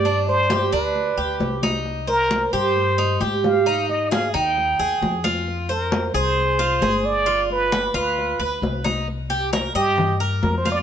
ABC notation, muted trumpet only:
X:1
M:4/4
L:1/8
Q:1/4=133
K:Cm
V:1 name="Muted trumpet"
d c2 =B4 z | z B2 c3 z f- | f e f g4 z | z B2 c4 d- |
d =B2 B3 z2 | z3 G2 z (3B c d |]